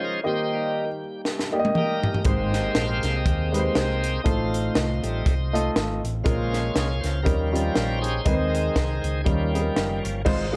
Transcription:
Already playing: french horn section C#3 D#3 F4 C5, tonewheel organ F3 G#3 C#4 D#4 C5
0.05 tonewheel organ A#4
0.24 upright piano D#3 A#3 D#4 G4 D#5, french horn section G3 A#3 D#4 G4, tonewheel organ D#4 G4
0.28 tonewheel organ C5
0.54 tonewheel organ G3 A#3 D#4
1.25 snare
1.39 snare
1.52 upright piano A#3 D#4 G4 D5
1.59 upright piano D#5
1.65 high tom
1.75 tonewheel organ G3 A#3 D#4 G4 A#4 D#5, mid tom
2.04 floor tom
2.14 floor tom
2.24 fingered electric bass G#1, upright piano G#2 G#3 D#4 G4 C5, tonewheel organ G#3 A#3 C4 G4 C5 D#5, french horn section G#3 C4 D#4, kick, closed hi-hat
2.53 snare, closed hi-hat
2.75 fingered electric bass A#1, tonewheel organ C5 F5, snare, closed hi-hat
3.03 fingered electric bass C2, snare, closed hi-hat
3.16 tonewheel organ G4 C5 D#5
3.26 fingered electric bass D#2, kick, closed hi-hat
3.52 upright piano G#3 D#4 G4 B4, closed hi-hat
3.60 upright piano C5
3.75 fingered electric bass C2, snare, closed hi-hat
4.04 closed hi-hat
4.24 fingered electric bass A1, upright piano A2 A3 D#4 F4 C5, french horn section A3 F4, tonewheel organ D#4 F4 C5, kick, closed hi-hat
4.54 closed hi-hat
4.74 fingered electric bass C2, tonewheel organ C5 D#5, snare, closed hi-hat
5.03 fingered electric bass A1, tonewheel organ G3 A3 D#4, closed hi-hat
5.26 fingered electric bass C2, kick, closed hi-hat
5.53 upright piano A3 D#4 F4 D#5, closed hi-hat
5.76 fingered electric bass G#1, snare, closed hi-hat
6.04 fingered electric bass A1, closed hi-hat
6.23 fingered electric bass A#1, upright piano A#2 G#3 C#4 F4 A#4, tonewheel organ C#3 G#3 C#4 F4 A#4 C5, french horn section G#3 A#3 C#4, kick, closed hi-hat
6.51 tonewheel organ G#4, snare, closed hi-hat
6.74 fingered electric bass C2, tonewheel organ G#4, snare, closed hi-hat
7.01 fingered electric bass C#2, tonewheel organ C5, snare, closed hi-hat
7.22 upright piano D#3 G3 C#4 D#4 A#4, tonewheel organ F3 G3 C#4 G4 A#4, kick
7.27 fingered electric bass D#2, french horn section G3 D#4, closed hi-hat
7.51 upright piano G3 C#4 D#4 F4, tonewheel organ C#4 G4 A#4
7.56 closed hi-hat
7.75 fingered electric bass A#1, snare, closed hi-hat
7.99 tonewheel organ D#4 G#4 C5
8.04 closed hi-hat
8.25 fingered electric bass D#2, tonewheel organ D#3 G#3 C4, upright piano D#3 G#3 C4 D#4 B4, french horn section D#3 G#3 C4, kick, closed hi-hat
8.32 upright piano C5
8.50 tonewheel organ D#4 A#4
8.55 closed hi-hat
8.76 fingered electric bass C2, kick, snare, closed hi-hat
9.02 fingered electric bass C#2, tonewheel organ G#4, closed hi-hat
9.21 upright piano G3, tonewheel organ G4 G#4
9.25 fingered electric bass D#2, upright piano D#3 C#4 D#4 A#4, tonewheel organ F3 G3 A#3 C#4, french horn section G3 A#3 C#4, kick, closed hi-hat
9.54 upright piano G3 C#4 D#4 G#4, closed hi-hat
9.61 upright piano A#4
9.76 fingered electric bass F#1, snare, closed hi-hat
10.05 fingered electric bass G1, closed hi-hat
10.25 fingered electric bass G#1, upright piano G#2 G#3 D#4 F4 C5, tonewheel organ D#3 G#3 C4 F4, kick, crash
10.52 upright piano G#3 D#4

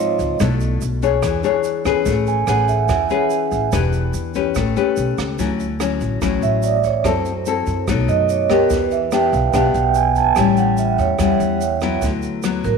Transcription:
Already playing: nylon-string guitar G#2 F3 C4 D#4, vibraphone C#5 D#5 F5
0.19 upright bass C#2, kick, closed hi-hat, shaker
0.40 upright bass B1, nylon-string guitar B2 A3 D4 E4, kick, cross-stick, closed hi-hat, shaker
0.60 closed hi-hat, shaker
0.81 upright bass B1, closed hi-hat, shaker
1.02 nylon-string guitar D4 G#4 C#5, kick, closed hi-hat, shaker
1.23 upright bass E2, nylon-string guitar E3, kick, cross-stick, closed hi-hat, shaker
1.44 nylon-string guitar D4 G#4 C#5, closed hi-hat, shaker
1.64 closed hi-hat, shaker
1.85 upright bass E2, nylon-string guitar C#4 G#4 B4, kick, cross-stick, closed hi-hat, shaker
2.06 upright bass A1, nylon-string guitar A3, kick, closed hi-hat, shaker
2.27 vibraphone G#5, closed hi-hat, shaker
2.47 upright bass A1, nylon-string guitar C#4 G#4 B4, vibraphone F#5, cross-stick, closed hi-hat, shaker
2.68 vibraphone E5, kick, closed hi-hat, shaker
2.88 upright bass E2, nylon-string guitar E3, vibraphone F#5, kick, cross-stick, closed hi-hat, shaker
3.10 nylon-string guitar C#4 G#4 B4, closed hi-hat, shaker
3.30 closed hi-hat, shaker
3.52 upright bass A1, kick, closed hi-hat, shaker
3.72 upright bass E1, nylon-string guitar E3 D4 G4 B4, kick, cross-stick, closed hi-hat, shaker
3.93 closed hi-hat, shaker
4.14 upright bass E2, closed hi-hat, shaker
4.34 nylon-string guitar C#4 G4 B4, kick, closed hi-hat, shaker
4.55 upright bass A1, nylon-string guitar A3, kick, cross-stick, closed hi-hat, shaker
4.76 nylon-string guitar C#4 G4 B4, closed hi-hat, shaker
4.96 upright bass B1, closed hi-hat, shaker
5.18 upright bass C#2, kick, cross-stick, closed hi-hat, shaker
5.39 upright bass D2, nylon-string guitar D3 F#3 C#4 E4, kick, closed hi-hat, shaker
5.60 closed hi-hat, shaker
5.80 nylon-string guitar F#3 C#4 E4, cross-stick, closed hi-hat, shaker
6.01 upright bass A1, kick, closed hi-hat, shaker
6.22 upright bass A1, nylon-string guitar A2 F#3 C#4 E4, kick, cross-stick, closed hi-hat, shaker
6.42 upright bass A1, vibraphone E5, closed hi-hat, shaker
6.63 vibraphone D5, closed hi-hat, shaker
6.84 vibraphone C#5, kick, closed hi-hat, shaker
7.04 upright bass F#2, nylon-string guitar F#3 C4 E4 A4, vibraphone C5, kick, cross-stick, closed hi-hat, shaker
7.25 closed hi-hat, shaker
7.46 nylon-string guitar C4 E4 A4, closed hi-hat, shaker
7.66 upright bass F#2, kick, closed hi-hat, shaker
7.88 upright bass B1, nylon-string guitar B2 F#3 A3 D#4, kick, cross-stick, closed hi-hat, shaker
8.08 upright bass F#2, vibraphone D#5, closed hi-hat, shaker
8.29 vibraphone C#5, closed hi-hat, shaker
8.49 nylon-string guitar B3 D4 G4, vibraphone A#4, kick, cross-stick, closed hi-hat, shaker
8.70 upright bass E2, nylon-string guitar E3, vibraphone B4, kick, closed hi-hat, shaker
8.91 vibraphone E5, closed hi-hat, shaker
9.12 nylon-string guitar B3 D4 G4, vibraphone G5, cross-stick, closed hi-hat, shaker
9.33 upright bass B1, vibraphone F5, kick, closed hi-hat, shaker
9.53 upright bass B1, nylon-string guitar B2 B3 D4 G4, vibraphone F#5, kick, cross-stick, closed hi-hat, shaker
9.74 upright bass B1, vibraphone G5, closed hi-hat, shaker
9.94 vibraphone G#5, closed hi-hat, shaker
10.15 vibraphone A5, kick, closed hi-hat, shaker
10.36 upright bass A1, nylon-string guitar A2 G3 C#4 E4, vibraphone G5, kick, cross-stick, closed hi-hat, shaker
10.57 vibraphone F#5, closed hi-hat, shaker
10.77 vibraphone E5, closed hi-hat, shaker
10.98 upright bass E2, vibraphone C#5, kick, closed hi-hat, shaker
11.19 upright bass E2, nylon-string guitar E3 G3 C#4 E4, kick, cross-stick, closed hi-hat, shaker
11.40 upright bass E2, closed hi-hat, shaker
11.60 closed hi-hat, shaker
11.81 nylon-string guitar F#3 B3 E4, kick, cross-stick, closed hi-hat, shaker
12.02 upright bass D2, nylon-string guitar D3, kick, closed hi-hat, shaker
12.22 closed hi-hat, shaker
12.43 nylon-string guitar F#3 B3 E4, cross-stick, closed hi-hat, shaker
12.64 upright bass A1, vibraphone A#4, kick, closed hi-hat, shaker

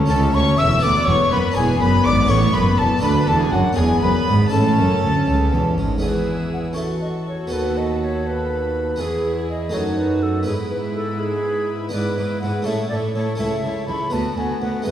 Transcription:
Already playing: viola section C#4
0.06 harpsichord C#4 E4 A4, violin section A4
0.10 double bass section C#2, harpsichord C#2, cello section C#2, violin section A5, flute A5
0.34 double bass section D2, harpsichord D2, cello section D2, violin section C#5 C#6, flute C#6
0.58 double bass section E1, cello section E2, harpsichord E2, violin section E5 E6, flute E6
0.79 harpsichord B3 F#4 B4, violin section D5
0.83 harpsichord D2, cello section D2, double bass section D2, viola section B3, flute D6, violin section D6
1.07 double bass section E1, cello section E2, harpsichord E2, violin section C#5 C#6, flute C#6
1.31 double bass section F#1, cello section F#2, harpsichord F#2, violin section B4 B5, flute B5
1.52 harpsichord D4 E4 B4, violin section G#5
1.56 double bass section E1, cello section E2, harpsichord E2, viola section B3, violin section G#4, flute G#5
1.80 double bass section F#1, cello section F#2, harpsichord F#2, violin section B4 B5, flute B5
2.04 double bass section G#1, cello section G#2, harpsichord G#2, violin section D5 D6, flute D6
2.26 double bass section A1, harpsichord C#4 E4 A4, violin section C#5 C#6
2.30 harpsichord A2, cello section A2, flute C#6
2.52 double bass section F#1, harpsichord F#2, cello section F#2, violin section B4 B5, flute B5
2.77 double bass section E1, cello section E2, harpsichord E2, violin section A4 A5, flute A5
2.98 harpsichord D4 F#4 A4, violin section B4 B5
3.03 double bass section D2, harpsichord D2, cello section D2, viola section D4, flute B5
3.26 double bass section E1, harpsichord E2, cello section E2, violin section A4 A5, flute A5
3.39 violin section G#4 G#5, flute G#5
3.51 double bass section F#1, harpsichord F#2, cello section F#2, violin section F#4 F#5, flute F#5
3.73 double bass section E1, harpsichord D4 E4 G#4, violin section G#4 G#5
3.77 harpsichord E2, cello section E2, viola section B3, flute G#5
3.99 double bass section F#1, cello section F#2, harpsichord F#2, violin section B4 B5, flute B5
4.27 double bass section G#1, harpsichord G#2, cello section G#2
4.48 double bass section A1, harpsichord C#4 E4 A4, violin section A4 A5, flute A5
4.53 harpsichord A2, cello section A2, viola section C#4
4.77 double bass section F#1, cello section F#2, harpsichord F#2
5.02 double bass section D2, harpsichord D2, cello section D2
5.27 harpsichord C#2, double bass section C#2, cello section C#2
5.52 double bass section E1, cello section E2, harpsichord E2
5.78 double bass section G#1, cello section G#2, harpsichord G#2
5.98 harpsichord B3 E4 G#4, violin section G#4
6.03 cello section E2, harpsichord E2, viola section E4, flute B4, violin section E6
6.53 flute F#5
6.73 harpsichord C#4 F#4 A4
6.77 viola section F#4, violin section A4 C#6, flute E5
7.01 flute D#5
7.27 flute C#5
7.47 harpsichord B3 F#4 A4
7.52 harpsichord D#2, cello section D#2, flute B4, violin section B5
7.77 flute D#5
8.03 flute C#5
8.27 flute B4
8.96 harpsichord B3 E4 G#4, viola section E4
9.00 cello section E2, harpsichord E2, violin section G#4, flute G#4
9.50 flute D#5
9.69 harpsichord A3 D#4 F#4
9.74 cello section F#2, harpsichord F#2, viola section D#4, violin section F#4 A5, flute C#5
9.97 flute B4
10.23 flute A4
10.43 harpsichord B3 E4, flute G#4, violin section B4 B5
10.47 cello section G#2, harpsichord G#2, viola section E4
10.71 flute B4
10.94 flute A4
11.19 flute G#4
11.89 harpsichord B3 D4 E4, violin section B4
11.93 harpsichord G#2, cello section G#2, viola section E4, flute B4, violin section D6
12.16 cello section G#2, harpsichord G#2, viola section E4, violin section B4 D6
12.41 cello section G#2, harpsichord G#2, viola section E4, violin section B4 D6, flute F#5
12.62 harpsichord A3 C#4 E4, viola section E4, violin section A4 C#6, flute E5
12.67 harpsichord A2, cello section A2
12.89 cello section A2, harpsichord A2, viola section E4, violin section A4 C#6, flute D5
13.14 cello section A2, harpsichord A2, viola section E4, violin section A4 C#6, flute C#5
13.35 cello section C#2, harpsichord A3 C#4 E4, viola section E4, violin section A4 C#6, flute E5
13.40 harpsichord C#2
13.63 cello section C#2, harpsichord C#2, viola section E4, violin section A4 C#6
13.86 cello section C#2, harpsichord C#2, viola section E4, violin section A4 C#6, flute B5
14.10 cello section D2, harpsichord D2 B3 B4, viola section B3, violin section F#4 B5, flute A5
14.36 cello section D2, harpsichord D2, viola section B3, violin section F#4 B5, flute G#5
14.60 cello section D2, harpsichord D2, viola section B3, violin section F#4 B5, flute F#5
14.82 cello section E2, harpsichord G#3 B3 B4, viola section B3, violin section E4 G#5, flute B4
14.87 harpsichord E2

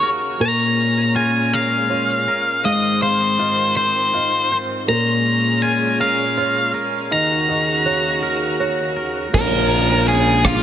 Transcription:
Already playing: string section D#2 C#3 F#4, clean electric guitar F#4
0.03 clean electric guitar A#4
0.40 clean electric guitar A#2, string section A#2 G#3 C#4, felt piano A#4, lead electric guitar A#5
1.15 clean electric guitar F4, lead electric guitar G#5
1.53 clean electric guitar A#4, lead electric guitar F5
1.90 clean electric guitar F4, felt piano C#5
2.28 clean electric guitar A#4
2.64 string section G#2 D#3 C4, clean electric guitar G#3, lead electric guitar D#5, felt piano F5
3.02 lead electric guitar C5, felt piano F5
3.39 clean electric guitar F4, felt piano D#5
3.77 lead electric guitar C5, clean electric guitar C5
4.14 clean electric guitar F4, felt piano D#5
4.52 clean electric guitar C5
4.88 string section A#2 G#3 C#4, clean electric guitar A#2, felt piano A#4, lead electric guitar A#5
5.62 clean electric guitar F4, lead electric guitar G#5
6.01 clean electric guitar A#4, lead electric guitar F5
6.38 clean electric guitar F4, felt piano C#5
6.74 clean electric guitar A#4
7.11 string section D#2 C#3 F#4, clean electric guitar D#3, felt piano D#5, lead electric guitar A#5
7.49 felt piano D#5
7.86 clean electric guitar F#4, felt piano C#5
8.23 clean electric guitar A#4
8.60 clean electric guitar F#4, felt piano C#5
8.96 clean electric guitar A#4
9.31 picked electric bass A#1, clean electric guitar A#2, string section C#3 G#3 A#3, felt piano A#4, lead electric guitar A#4, kick, crash
9.71 closed hi-hat
10.08 clean electric guitar C#4, lead electric guitar G#4, closed hi-hat
10.45 lead electric guitar F4, clean electric guitar F4, kick, cross-stick, closed hi-hat

